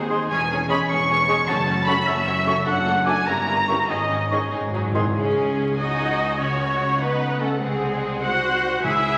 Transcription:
Already playing: D#2 D#3 G#3 C4 D#4 G#4 C5 G#5
0.01 C4
0.10 G#3 G#4 C6
0.20 C4
0.30 E1 E2 E3 G#3 C#4 G#4 C#5 G#5
0.40 C#4
0.50 G#3 C#4 G#4 C#5
0.60 C#4
0.69 G#3 C#4 G#4 C#5 B5 C#6
0.79 G#5
0.88 E1 E2 G#3 C#4 G#4 C#5 C#6
0.98 G#5
1.08 G#3 C#4 G#4 C#5
1.18 C#4
1.28 G#3 C#4 G#4 C#5 C#6
1.38 C#4
1.47 F#1 F#2 A3 C#4 F#4 C#5 A5
1.57 A3
1.67 A3 C#4 F#4 C#5
1.77 F#4
1.86 F#3 A3 C#4 F#4 A4 C#5 B5 C#6
1.97 C#5
2.05 F#1 F#2 A3 C#4 F#4 C#5 E5 F#5
2.17 C#5
2.26 A3 C#4 F#4 C#5
2.36 C#4
2.45 F#3 A3 C#4 F#4 A4 C#5 C#6
2.56 C#3
2.65 F#1 F#2 A3 D4 F#4 A4 F#5
2.76 A3
2.85 A3 D4 F#4 A4
2.96 F#4
3.06 F#3 A3 D4 F#4 A4 G#5 D6
3.17 D5
3.26 G1 G2 G3 C#4 E4 A#4 A#5
3.37 A#3
3.48 G3 C#4 E4 A#4
3.58 E4
3.68 E3 G3 C#4 E4 G4 A#4 C#6
3.89 G#1 G#2 D#3 C#4 D#4 G#4 D#5
4.00 G#3
4.11 D#3 C#4 D#4 G#4
4.22 D#4
4.31 D#3 C#4 D#4 G#4 C#6
4.42 C#5
4.52 G#1 G#2 G#3 D#4 G#4
4.61 G#2 G#3
4.68 G#2
4.73 G#2 F#3 C4 D#4 G#4
4.84 G#2 D#4
4.91 G#2 D#3 E3 C4 D#4 G#4 C6
4.99 G#2
5.05 G#2 C5
5.14 C#2 C#3 G#3 C#4 G#4 G#5
5.37 G#3
5.58 C#4
5.78 D#4 E4 F#4 D#5
6.01 G#4
6.39 C#3 C#4 F#4 C#5 F#5
6.60 A3
6.80 C#4
7.00 B3 D#4 F#4 B4
7.21 A4
7.40 A3 C#4 F#4 A4
7.60 C2 C3 G#3 C4 G#4
7.81 F#3
8.03 G#3
8.22 D#4 F#4 C5 F#5
8.44 F#4
8.64 D#4
8.83 C#2 C#3 E4 G#4 E5 G#5
9.05 G#3

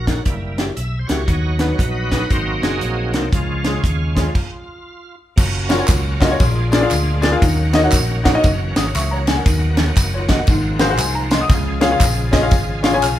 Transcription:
Already playing: A#1 F#4
0.06 A#3 D#4 F#4 A#4, kick, snare, closed hi-hat
0.25 F#1 G3 A#3 E4, kick, closed hi-hat
0.57 A#3 E4 F#4 G4 D5, snare, closed hi-hat
0.76 B1 E5, closed hi-hat
0.99 C5
1.07 C#2 A#3 E4 F#4 C#5, snare, closed hi-hat
1.11 G4
1.25 D#2 D#3 F#3 B3 D#4, kick, closed hi-hat
1.59 B3 D#4 F#4 B4, snare, closed hi-hat
1.73 C#5
1.78 A#1 D#4 F#4 B4, kick, closed hi-hat
2.12 B3 D#4 F#4 B4, kick, snare, closed hi-hat
2.29 G#1 G#2 F#3 A#3 C4 D#4 F#4 C5, kick, closed hi-hat
2.62 F#1 C4 D#4 F#4 G#4, snare, closed hi-hat
2.81 A#1, closed hi-hat
3.13 C2 C4 D#4 F#4 A#4, snare, closed hi-hat
3.32 C#2 C#3 F3 G#3 C#4 F4, kick, closed hi-hat
3.64 G#3 C#4 F4 G#4, snare, closed hi-hat
3.84 D#2, kick, closed hi-hat
4.15 F3 G#3 C#4 F4 G#4, kick, snare, closed hi-hat
4.35 kick, crash
5.36 F#1 F#3 A#3 C#4 F4 F#4, kick, crash, tambourine
5.69 C#4 F4 F#4 A#4 C#5, snare, ride, tambourine
5.78 C#4 F4 F#4 A#4 C#5
5.88 C#2, kick, clap, ride, tambourine
6.20 C#4 F4 F#4 A#4 D#5, kick, snare, clap, ride, tambourine
6.30 C#4 F4 F#4 A#4 C#5
6.39 A#1 A#2 G#3 A#3 D4 G#4, kick, ride, tambourine
6.72 D4 F4 G#4 A#4 D5, snare, ride, tambourine
6.81 D4 F4 G#4 A#4 F5
6.91 D2, clap, ride, tambourine
7.22 D4 F4 G#4 A#4 D5, snare, ride, tambourine
7.31 D4 F4 G#4 A#4 F5
7.42 D#2 D#3 F#3 C#4 F#5, kick, ride, tambourine
7.73 D#4 F#4 A#4 C#5 D#5, snare, ride, tambourine
7.83 D#4 F#4 A#4 C#5 F#5
7.92 A#1, kick, clap, ride, tambourine
8.24 D#4 F#4 A#4 C#5 F#5, kick, snare, clap, ride, tambourine
8.33 D#4 F#4 A#4 C#5 D#5
8.43 F#1 E3, kick, ride, tambourine
8.76 G#1 F#5 D#6, snare, ride, tambourine
8.94 C#2 E5 C#6, clap, ride, tambourine
9.11 C#5 A#5
9.27 G#5, snare, ride, tambourine
9.37 A#4 F#5
9.46 D#2 D#3 F#3 B3, kick, ride, tambourine
9.77 snare, ride, tambourine
9.97 F#1, kick, clap, ride, tambourine
10.14 F4 C#5
10.29 F#4 D#5, kick, snare, clap, ride, tambourine
10.39 A#4 F#5
10.47 G#1 G#2 F3 G#3 A#3 C4, kick, ride, tambourine
10.79 F#4 G#4 A#4 C5 F5, snare, ride, tambourine
10.89 F#4 G#4 A#4 C5 F#5
10.99 C2 C5 G#5, clap, ride, tambourine
11.15 A#5
11.31 D#5 C6, snare, ride, tambourine
11.41 F#5 D#6
11.49 C#2 C#3 F4 G#4, kick, ride, tambourine
11.80 C#4 F4 G#4 C#5 F5, snare, ride, tambourine
11.90 C#4 F4 G#4 C#5 F5
12.00 A#1, kick, clap, ride, tambourine
12.32 C#4 F4 G#4 C#5 D#5, kick, snare, clap, ride, tambourine
12.41 C#4 F4 G#4 C#5 F5
12.51 G#1, kick, ride, tambourine
12.83 C#4 F4 G#4 C#5 F5, snare, ride, tambourine
12.92 C#4 F4 G#4 C#5 G#5
13.02 B1 G#5 F6, clap, ride, tambourine

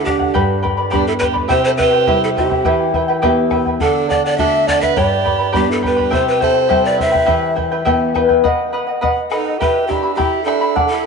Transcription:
Already playing: D3 A3 D4 E4 F#4
0.05 G4 A4 D5 F#5, bombo low
0.09 D4
0.19 D5 F#5, bombo low
0.34 G2 G4 B4 D5 G5 B5, bombo low
0.62 B4 D5 G5 B5, bombo low
0.77 B4 D5 B5
0.91 G3 B3 D4 G4 B4 D5 G5 B5, bombo low
1.07 E4 A4
1.19 B4 D5 G5 B5, bombo low
1.24 G4
1.33 B4 D5 B5, bombo low
1.48 C3 E4 G4 C5 E5 G5, bombo low
1.64 A4 C5
1.78 E4 G4 B4 C5 E5 G5, bombo low
1.93 E4 C5 G5
2.07 G3 C4 E4 G4 C5 E5 G5, bombo low
2.24 E4 A4
2.36 E4 G4 C5 E5 G5, bombo low
2.51 E4 C5 G5, bombo low
2.65 E3 E4 G4 B4 E5 G5, bombo low
2.94 E4 B4 E5 G5, bombo low
3.08 E4 B4 G5
3.22 B3 E4 G4 B4 E5 G5, bombo low
3.50 E4 B4 E5 G5, bombo rim, bombo low
3.66 E4 B4 G5, bombo low
3.80 D3 D4 A4 D5 F#5, bombo low
4.09 A4 D5 F#5, bombo low
4.24 A4 D5 F#5
4.38 A3 D4 F#4 A4 D5 E5 F#5, bombo low
4.67 A4 D5 F#5, bombo low
4.81 B4 D5 E5 F#5, bombo low
4.96 G2 G4 B4 D5 G5 B5, bombo low
5.24 B4 D5 G5 B5, bombo low
5.39 B4 D5 B5
5.52 G3 B3 D4 G4 B4 D5 G5 B5, bombo low
5.70 E4 A4
5.82 G4 B4 D5 G5 B5, bombo low
5.97 B4 D5 B5, bombo low
6.10 C3 E4 G4 C5 E5 G5, bombo low
6.28 G4 B4
6.40 E4 A4 C5 E5 G5, bombo low
6.54 E4 C5 G5
6.69 G3 C4 E4 G4 C5 E5 G5, bombo low
6.85 B4 D5
6.98 E4 B4 C5 E5 G5, bombo low
7.12 E4 C5 G5, bombo low
7.26 E3 E4 G4 B4 E5 G5, bombo low
7.56 E4 B4 E5 G5, bombo low
7.72 E4 B4 G5
7.85 B3 E4 G4 B4 E5 G5, bombo low
8.14 E4 B4 E5 G5, bombo rim, bombo low
8.29 E4 B4 G5, bombo low
8.44 B4 D#5 F#5, bombo low
8.73 B4 D#5 F#5
8.87 D#5 F#5
9.01 B4 D#5 F#5, bombo low
9.31 D#4 A4 B4 D#5 F#5, bombo rim
9.46 D#5 F#5
9.58 E4 G4 B4 E5 G5 B5, bombo low
9.87 D4 E4 G4 E5 G5 B5, bombo low
10.03 E4 E5 B5
10.15 E4 G4 E5 G5 B5
10.19 bombo low
10.44 D4 E4 A4 E5 G5 B5
10.48 bombo rim
10.61 E4 E5 B5
10.75 A4 D5 F#5, bombo low
10.88 E4 A4

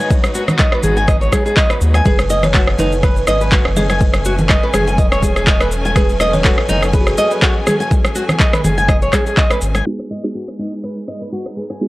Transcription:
Already playing: G#3 D#4 F#4 B4 D#5
0.00 G#5
0.10 kick, high conga, cabasa
0.23 cross-stick, muted conga, cabasa
0.35 F#4, cabasa
0.48 cross-stick, muted conga, low conga, cabasa
0.58 D#5, kick, clap, high conga, cabasa
0.72 B4, cross-stick
0.83 G#1 G#4, mid tom, muted conga, high conga, low conga, cabasa
0.97 G#5, cabasa
1.08 D#5, kick, cross-stick, muted conga, cabasa
1.21 C#5, cabasa
1.32 G#4, kick, cross-stick, muted conga, high conga, cabasa
1.46 G#4, cabasa
1.57 D#5, kick, clap, muted conga, cabasa
1.70 B4, cross-stick, cabasa
1.81 D#2, cabasa
1.94 G#5, cross-stick, muted conga, cabasa
2.05 F#1 F#3 A3 C#4 G#4 B4 G#5, kick, high conga, cabasa
2.19 cross-stick, muted conga, cabasa
2.30 D#5, cabasa
2.43 C#5, cross-stick, muted conga, low conga, cabasa
2.54 F#4, kick, clap, high conga, cabasa
2.67 cross-stick
2.78 F#1 D#4 B4, mid tom, muted conga, low conga, cabasa
2.92 cabasa
3.03 B4, kick, cross-stick, muted conga, cabasa
3.16 cabasa
3.27 G#1 B4 D#5, cross-stick, muted conga, cabasa
3.41 B4, cabasa
3.52 F#4, kick, clap, muted conga, cabasa
3.65 F#1, cross-stick
3.76 G#4 D#5, mid tom, high conga, cabasa
3.90 G#5, cross-stick, muted conga, cabasa
4.00 kick, high conga, cabasa
4.14 cross-stick, muted conga, cabasa
4.25 F#4, cabasa
4.38 muted conga, low conga, cabasa
4.49 D#5, kick, cross-stick, clap, high conga, cabasa
4.63 B4
4.74 F#1 G#4, cross-stick, mid tom, muted conga, high conga, low conga, cabasa
4.87 G#5, cabasa
4.98 E1 D#5, kick, muted conga, cabasa
5.12 C#5, cross-stick, cabasa
5.22 G#4, kick, muted conga, high conga, cabasa
5.36 G#4, cross-stick, cabasa
5.47 D#5, kick, clap, muted conga, cabasa
5.61 B4, cross-stick, cabasa
5.72 cabasa
5.85 G#5, muted conga, cabasa
5.96 G#4 B4, kick, cross-stick, high conga, cabasa
6.09 muted conga, cabasa
6.20 D#5, cross-stick, cabasa
6.33 C#5, muted conga, low conga, cabasa
6.44 F#4 A4, kick, clap, high conga, cabasa
6.58 cross-stick
6.69 F#1 D#4, mid tom, muted conga, low conga, cabasa
6.82 cross-stick, cabasa
6.93 G#4 B4, kick, muted conga, cabasa
7.01 F#4
7.07 G#4, cross-stick, cabasa
7.18 D#5, muted conga, cabasa
7.31 B4, cabasa
7.42 F#4, kick, cross-stick, clap, muted conga, cabasa
7.67 G#4, cross-stick, mid tom, high conga, cabasa
7.80 G#5, muted conga, cabasa
7.91 kick, high conga, cabasa
8.05 cross-stick, muted conga, cabasa
8.15 F#4, cabasa
8.29 cross-stick, muted conga, low conga, cabasa
8.40 D#5, kick, clap, high conga, cabasa
8.53 B4, cross-stick, mid tom, cabasa
8.64 F#1 G#4, mid tom, muted conga, high conga, low conga, cabasa
8.78 G#5, cabasa
8.88 D#5, kick, cross-stick, muted conga, cabasa
9.02 C#5, cabasa
9.13 G#4, kick, cross-stick, clap, muted conga, high conga, cabasa
9.26 G#4, cabasa
9.37 D#5, kick, clap, muted conga, cabasa
9.51 B4, cross-stick, cabasa
9.61 G#1, cabasa
9.75 G#5, cross-stick, muted conga, cabasa
9.86 G#3 B3 D#4 F#4 G#4 B4
9.99 cross-stick
10.11 D#5
10.24 G#3 B3 D#4 F#4 G#4, cross-stick
10.35 F#4
10.48 cross-stick
10.59 D#4, open hi-hat
10.84 B4, cross-stick
11.08 D#5, cross-stick, open hi-hat
11.21 B4
11.32 F#4
11.46 cross-stick
11.57 G#4, open hi-hat
11.70 G#5, cross-stick
11.81 G#3 B3 D#4 F#4 G#4

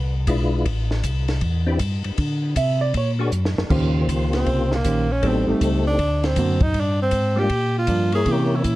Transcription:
Already playing: C2 B4
0.27 B1 G#3 D4 E4 F4 B4, kick, hi-hat pedal, ride
0.66 A1, kick, ride
0.91 snare
1.04 C2, kick, hi-hat pedal, ride
1.28 snare, ride
1.41 E2, kick, ride
1.67 C4 D4 E4 G4 B4
1.79 G2, kick, hi-hat pedal, ride
2.04 G2, ride
2.18 D3, kick, ride
2.56 C3 E5, kick, hi-hat pedal, ride
2.81 D5
2.94 A#2 C#5, kick, ride
3.19 A#3 D4 F#4 G#4 C#5
3.32 F#2, hi-hat pedal
3.45 snare
3.58 F#2, snare
3.70 D#2 C#3 D#3 A#3 C#4 F4 G4 C5, kick, crash
4.08 C#2, kick, hi-hat pedal, ride
4.33 C4, snare, ride
4.46 C2, kick, ride
4.72 A#3, snare
4.84 A#1 D#3 C#4 G4 C5, kick, hi-hat pedal, ride
5.12 C#4
5.22 A1 F#3 A3 B3 C4 D4 D#4 G4 A4, kick, ride
5.26 C4
5.47 A1 G3 A3 C4 D#4
5.61 C#2, kick, hi-hat pedal, ride
5.87 D4
5.99 D2, kick, ride
6.24 C4, snare, ride
6.36 F#2 D3 A#3 C4 F#4, kick, hi-hat pedal, ride
6.60 D#4, kick, ride
6.74 G2, kick, ride
6.80 D4
7.02 C4
7.11 G#2, kick, hi-hat pedal, ride
7.36 G3 A#3 D4 F4 G4
7.50 A#2, kick, ride
7.78 F4
7.87 G2 F3 A#3 D4, kick, hi-hat pedal, ride
8.12 A#3 E4 G#4 A#4 C#5, ride
8.26 C3 E3 A#3 C#4, kick, ride
8.32 G4
8.55 E4
8.64 A#2, kick, hi-hat pedal, ride

